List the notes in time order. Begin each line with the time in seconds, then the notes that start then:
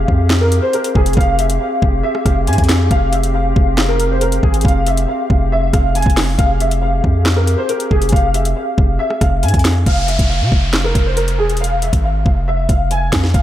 Already playing: C4 G4 G#4 F5
0.08 F2, kick
0.30 snare, clap
0.41 A#4
0.52 closed hi-hat
0.62 C5
0.73 A#4, closed hi-hat
0.84 closed hi-hat
0.95 F1 G#4, kick
1.06 closed hi-hat
1.13 F1, kick, closed hi-hat
1.18 F5, closed hi-hat
1.39 E5, closed hi-hat
1.50 closed hi-hat
1.60 F5
1.82 F1, kick
2.03 E5
2.15 cross-stick
2.26 F1 F5, kick, cross-stick, closed hi-hat
2.47 G#2 G#5, closed hi-hat
2.53 closed hi-hat
2.58 F2, kick, closed hi-hat
2.64 closed hi-hat
2.69 snare, clap, closed hi-hat
2.91 F1 F5, kick, closed hi-hat
3.12 E5, closed hi-hat
3.23 closed hi-hat
3.34 F5
3.56 F1, kick
3.78 snare, clap
3.89 A#4
4.00 closed hi-hat
4.11 C5
4.21 A#4, closed hi-hat
4.32 closed hi-hat
4.43 G#1 G#4, kick
4.54 closed hi-hat
4.61 F1 F5, kick, closed hi-hat
4.68 closed hi-hat
4.87 E5, closed hi-hat
4.97 closed hi-hat
5.08 F5
5.30 F1, kick
5.52 E5
5.73 F1 F5, kick, cross-stick, closed hi-hat
5.95 G#5, closed hi-hat
6.02 F1, kick, closed hi-hat
6.10 closed hi-hat
6.17 snare, clap, open hi-hat
6.38 F1 G4 G#4 F5, kick, closed hi-hat
6.60 E5, closed hi-hat
6.71 closed hi-hat
6.81 F5
7.04 F2, kick
7.26 snare, clap
7.36 A#4
7.47 closed hi-hat
7.58 C5
7.69 A#4, closed hi-hat
7.80 closed hi-hat
7.91 F1 G#4, kick
8.02 closed hi-hat
8.09 F1, kick, closed hi-hat
8.13 F5, closed hi-hat
8.34 E5, closed hi-hat
8.45 closed hi-hat
8.56 F5
8.78 F1, kick
8.99 E5
9.10 cross-stick
9.21 F1 F5, kick, cross-stick, closed hi-hat
9.43 G#2 G#5, closed hi-hat
9.48 closed hi-hat
9.54 F2, kick, closed hi-hat
9.59 closed hi-hat
9.65 snare, clap, closed hi-hat
9.86 F1 F5, kick, closed hi-hat, downlifter
10.08 E5, closed hi-hat
10.19 F1, kick, closed hi-hat
10.30 F5
10.41 C3
10.52 F1, kick
10.73 snare, clap
10.84 A#4
10.95 F1, kick, closed hi-hat
11.07 C5
11.16 A#4, closed hi-hat
11.28 closed hi-hat
11.39 E1 G#4
11.50 closed hi-hat
11.57 F5, closed hi-hat
11.64 closed hi-hat
11.82 E5, closed hi-hat
11.93 G#1, kick, closed hi-hat
12.04 F5
12.26 F1, kick
12.48 E5
12.69 F1 F5, kick, closed hi-hat
12.91 G#5, closed hi-hat
13.12 F2, kick, snare, clap, closed hi-hat
13.23 snare
13.34 F1 F5, kick, closed hi-hat